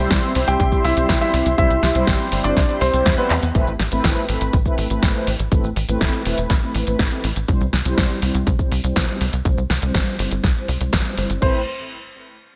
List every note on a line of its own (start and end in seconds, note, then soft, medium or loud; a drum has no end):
0.00 0.32 G3 loud
0.00 0.32 C4 medium
0.00 3.51 C4 medium
0.00 0.32 E4 medium
0.00 3.51 G4 medium
0.00 0.32 C5 loud
0.00 3.51 E5 medium
0.00 3.51 C6 medium
0.11 0.20 C2 loud
0.11 kick loud
0.11 snare loud
0.11 closed hi-hat medium
0.11 cabasa medium
0.23 closed hi-hat soft
0.23 cabasa soft
0.35 0.45 C2 medium
0.35 0.63 G3 medium
0.35 0.63 C4 medium
0.35 0.63 E4 medium
0.35 0.63 C5 loud
0.35 open hi-hat loud
0.48 0.57 C2 medium
0.48 0.77 G4 medium
0.48 0.77 G5 loud
0.48 closed hi-hat medium
0.48 cabasa medium
0.60 0.69 C2 loud
0.60 kick loud
0.60 closed hi-hat medium
0.60 cabasa medium
0.72 0.94 G3 medium
0.72 0.94 C4 medium
0.72 0.94 E4 medium
0.72 0.94 C5 medium
0.72 kick medium
0.72 cabasa soft
0.84 0.94 C2 loud
0.84 1.13 E4 medium
0.84 1.13 E5 loud
0.84 open hi-hat loud
0.97 1.06 C2 medium
0.97 1.18 G3 medium
0.97 1.18 C4 medium
0.97 1.18 E4 medium
0.97 1.18 C5 medium
0.97 closed hi-hat medium
0.97 cabasa medium
1.09 1.18 C2 loud
1.09 kick loud
1.09 snare loud
1.09 closed hi-hat medium
1.09 cabasa medium
1.21 1.39 G3 medium
1.21 1.39 C4 medium
1.21 1.39 E4 medium
1.21 1.50 E4 medium
1.21 1.39 C5 medium
1.21 1.50 E5 medium
1.21 closed hi-hat soft
1.21 cabasa soft
1.34 1.43 C2 loud
1.34 open hi-hat loud
1.46 1.55 C2 medium
1.46 closed hi-hat medium
1.46 cabasa medium
1.58 1.67 C2 loud
1.58 1.76 G3 medium
1.58 1.76 C4 medium
1.58 1.76 E4 medium
1.58 1.97 E4 medium
1.58 1.76 C5 medium
1.58 1.97 E5 loud
1.58 kick loud
1.58 closed hi-hat medium
1.58 cabasa medium
1.70 1.80 C2 medium
1.70 closed hi-hat soft
1.70 cabasa soft
1.83 1.92 C2 loud
1.83 snare medium
1.83 open hi-hat loud
1.95 2.04 C2 medium
1.95 2.29 G3 loud
1.95 2.29 C4 medium
1.95 2.29 E4 medium
1.95 2.29 C5 loud
1.95 closed hi-hat medium
1.95 cabasa medium
2.07 2.17 G1 loud
2.07 kick loud
2.07 snare loud
2.07 closed hi-hat medium
2.07 cabasa medium
2.20 closed hi-hat soft
2.20 cabasa soft
2.32 2.41 G1 loud
2.32 2.60 G3 medium
2.32 2.60 C4 medium
2.32 2.60 E4 medium
2.32 2.60 C5 loud
2.32 open hi-hat loud
2.44 2.54 G1 medium
2.44 2.73 D4 medium
2.44 2.73 D5 medium
2.44 closed hi-hat medium
2.44 cabasa medium
2.57 2.66 C2 loud
2.57 kick loud
2.57 snare medium
2.57 closed hi-hat medium
2.57 cabasa medium
2.69 2.90 G3 medium
2.69 2.90 C4 medium
2.69 2.90 E4 medium
2.69 2.90 C5 medium
2.69 closed hi-hat soft
2.69 cabasa soft
2.81 2.90 C2 loud
2.81 3.10 C4 medium
2.81 3.10 C5 loud
2.81 open hi-hat loud
2.93 3.03 C2 medium
2.93 3.15 G3 medium
2.93 3.15 C4 medium
2.93 3.15 E4 medium
2.93 3.15 C5 medium
2.93 closed hi-hat medium
2.93 cabasa medium
3.06 3.15 E2 loud
3.06 kick loud
3.06 snare loud
3.06 closed hi-hat medium
3.06 cabasa medium
3.18 3.36 G3 medium
3.18 3.47 B3 medium
3.18 3.36 C4 medium
3.18 3.36 E4 medium
3.18 3.47 B4 medium
3.18 3.36 C5 medium
3.18 closed hi-hat soft
3.18 cabasa soft
3.30 3.40 E2 loud
3.30 clap medium
3.30 open hi-hat loud
3.43 3.52 E2 medium
3.43 closed hi-hat medium
3.43 cabasa medium
3.55 3.64 A1 loud
3.55 3.72 A3 medium
3.55 3.72 C4 medium
3.55 3.72 E4 medium
3.55 3.72 B4 medium
3.55 kick loud
3.55 closed hi-hat medium
3.55 cabasa soft
3.67 3.77 A1 medium
3.67 cabasa soft
3.79 3.89 A1 loud
3.79 snare medium
3.79 open hi-hat loud
3.92 4.01 A1 medium
3.92 4.26 A3 medium
3.92 4.26 C4 medium
3.92 4.26 E4 medium
3.92 4.26 B4 loud
3.92 closed hi-hat medium
3.92 cabasa medium
4.04 4.13 A1 loud
4.04 kick loud
4.04 snare loud
4.04 closed hi-hat medium
4.04 cabasa soft
4.16 closed hi-hat soft
4.16 cabasa soft
4.29 4.38 A1 loud
4.29 4.57 A3 medium
4.29 4.57 C4 medium
4.29 4.57 E4 medium
4.29 4.57 B4 loud
4.29 open hi-hat loud
4.41 4.50 A1 medium
4.41 closed hi-hat medium
4.41 cabasa medium
4.53 4.63 A1 loud
4.53 kick loud
4.53 closed hi-hat medium
4.53 cabasa soft
4.66 4.87 A3 medium
4.66 4.87 C4 medium
4.66 4.87 E4 medium
4.66 4.87 B4 medium
4.66 kick medium
4.66 cabasa soft
4.78 4.87 A1 loud
4.78 open hi-hat loud
4.90 5.00 A1 medium
4.90 5.12 A3 medium
4.90 5.12 C4 medium
4.90 5.12 E4 medium
4.90 5.12 B4 medium
4.90 closed hi-hat medium
4.90 cabasa medium
5.03 5.12 A1 loud
5.03 kick loud
5.03 snare loud
5.03 closed hi-hat medium
5.03 cabasa soft
5.15 5.32 A3 medium
5.15 5.32 C4 medium
5.15 5.32 E4 medium
5.15 5.32 B4 medium
5.15 closed hi-hat soft
5.15 cabasa soft
5.27 5.36 A1 loud
5.27 open hi-hat loud
5.39 5.49 A1 medium
5.39 closed hi-hat medium
5.39 cabasa medium
5.52 5.61 A1 loud
5.52 5.69 A3 medium
5.52 5.69 C4 medium
5.52 5.69 E4 medium
5.52 5.69 B4 medium
5.52 kick loud
5.52 closed hi-hat medium
5.52 cabasa soft
5.64 5.73 A1 medium
5.64 cabasa soft
5.76 5.86 A1 loud
5.76 open hi-hat loud
5.89 5.98 A1 medium
5.89 6.23 A3 medium
5.89 6.23 C4 medium
5.89 6.23 E4 medium
5.89 6.23 B4 loud
5.89 closed hi-hat medium
5.89 cabasa medium
6.01 6.10 E1 loud
6.01 kick loud
6.01 snare loud
6.01 closed hi-hat medium
6.01 cabasa soft
6.13 closed hi-hat soft
6.13 cabasa soft
6.25 6.35 E1 loud
6.25 6.53 A3 medium
6.25 6.53 C4 medium
6.25 6.53 E4 medium
6.25 6.53 B4 medium
6.25 open hi-hat loud
6.38 6.47 E1 medium
6.38 closed hi-hat medium
6.38 cabasa medium
6.50 6.59 A1 loud
6.50 kick loud
6.50 snare medium
6.50 closed hi-hat medium
6.50 cabasa soft
6.62 6.84 A3 medium
6.62 6.84 C4 medium
6.62 6.84 E4 medium
6.62 6.84 B4 medium
6.62 cabasa soft
6.75 6.84 A1 loud
6.75 open hi-hat loud
6.87 6.96 A1 medium
6.87 7.09 A3 medium
6.87 7.09 C4 medium
6.87 7.09 E4 medium
6.87 7.09 B4 medium
6.87 closed hi-hat medium
6.87 cabasa medium
6.99 7.09 A1 loud
6.99 kick loud
6.99 snare loud
6.99 closed hi-hat medium
6.99 cabasa soft
7.11 7.29 A3 medium
7.11 7.29 C4 medium
7.11 7.29 E4 medium
7.11 7.29 B4 medium
7.11 closed hi-hat soft
7.11 cabasa soft
7.24 7.33 A1 loud
7.24 open hi-hat loud
7.36 7.45 A1 medium
7.36 closed hi-hat medium
7.36 cabasa medium
7.48 7.58 C2 loud
7.48 7.66 G3 medium
7.48 7.66 C4 medium
7.48 7.66 E4 medium
7.48 7.66 C5 medium
7.48 kick loud
7.48 closed hi-hat medium
7.48 cabasa soft
7.61 7.70 C2 medium
7.61 cabasa soft
7.73 7.82 C2 loud
7.73 snare medium
7.73 open hi-hat medium
7.85 7.95 C2 medium
7.85 8.19 G3 loud
7.85 8.19 C4 medium
7.85 8.19 E4 medium
7.85 8.19 C5 loud
7.85 closed hi-hat medium
7.85 cabasa medium
7.98 8.07 C2 loud
7.98 kick loud
7.98 snare loud
7.98 closed hi-hat medium
7.98 cabasa soft
8.10 closed hi-hat soft
8.10 cabasa soft
8.22 8.31 C2 loud
8.22 8.50 G3 medium
8.22 8.50 C4 medium
8.22 8.50 E4 medium
8.22 8.50 C5 medium
8.22 open hi-hat loud
8.35 8.44 C2 medium
8.35 closed hi-hat medium
8.35 cabasa medium
8.47 8.56 C2 loud
8.47 kick loud
8.47 closed hi-hat medium
8.47 cabasa soft
8.59 8.81 G3 medium
8.59 8.81 C4 medium
8.59 8.81 E4 medium
8.59 8.81 C5 medium
8.59 kick medium
8.59 cabasa soft
8.71 8.81 C2 loud
8.71 open hi-hat loud
8.84 8.93 C2 medium
8.84 9.05 G3 medium
8.84 9.05 C4 medium
8.84 9.05 E4 medium
8.84 9.05 C5 medium
8.84 closed hi-hat medium
8.84 cabasa medium
8.96 9.05 C2 loud
8.96 kick loud
8.96 snare loud
8.96 closed hi-hat medium
8.96 cabasa soft
9.08 9.26 G3 medium
9.08 9.26 C4 medium
9.08 9.26 E4 medium
9.08 9.26 C5 medium
9.08 closed hi-hat soft
9.08 cabasa soft
9.21 9.30 C2 loud
9.21 open hi-hat loud
9.33 9.42 C2 medium
9.33 closed hi-hat medium
9.33 cabasa medium
9.45 9.54 C2 loud
9.45 9.63 G3 medium
9.45 9.63 C4 medium
9.45 9.63 E4 medium
9.45 9.63 C5 medium
9.45 kick loud
9.45 closed hi-hat medium
9.45 cabasa soft
9.58 9.67 C2 medium
9.58 cabasa soft
9.70 9.79 C2 loud
9.70 snare medium
9.70 open hi-hat loud
9.82 9.91 C2 medium
9.82 10.16 G3 loud
9.82 10.16 C4 medium
9.82 10.16 E4 medium
9.82 10.16 C5 loud
9.82 closed hi-hat medium
9.82 cabasa medium
9.94 10.04 G1 loud
9.94 kick loud
9.94 snare loud
9.94 closed hi-hat medium
9.94 cabasa soft
10.07 closed hi-hat soft
10.07 cabasa soft
10.19 10.28 G1 loud
10.19 10.47 G3 medium
10.19 10.47 C4 medium
10.19 10.47 E4 medium
10.19 10.47 C5 medium
10.19 open hi-hat loud
10.31 10.41 G1 medium
10.31 closed hi-hat soft
10.31 cabasa medium
10.44 10.53 C2 loud
10.44 kick loud
10.44 snare medium
10.44 closed hi-hat medium
10.44 cabasa soft
10.56 10.77 G3 medium
10.56 10.77 C4 medium
10.56 10.77 E4 medium
10.56 10.77 C5 medium
10.56 cabasa soft
10.68 10.78 C2 medium
10.68 open hi-hat loud
10.80 10.90 C2 medium
10.80 11.02 G3 medium
10.80 11.02 C4 medium
10.80 11.02 E4 medium
10.80 11.02 C5 medium
10.80 closed hi-hat soft
10.80 cabasa medium
10.93 11.02 G1 loud
10.93 kick loud
10.93 snare loud
10.93 closed hi-hat medium
10.93 cabasa soft
11.05 11.15 G3 medium
11.05 11.15 C4 medium
11.05 11.15 E4 medium
11.05 11.15 C5 medium
11.05 closed hi-hat soft
11.05 cabasa soft
11.17 11.27 G1 loud
11.17 11.39 G3 medium
11.17 11.39 C4 medium
11.17 11.39 E4 medium
11.17 11.39 C5 medium
11.17 open hi-hat loud
11.30 11.39 G1 medium
11.30 closed hi-hat soft
11.30 cabasa medium
11.42 11.65 A1 loud
11.42 11.60 A3 medium
11.42 11.60 C4 medium
11.42 11.60 E4 medium
11.42 11.60 B4 loud
11.42 11.60 C5 medium
11.42 kick loud
11.42 crash medium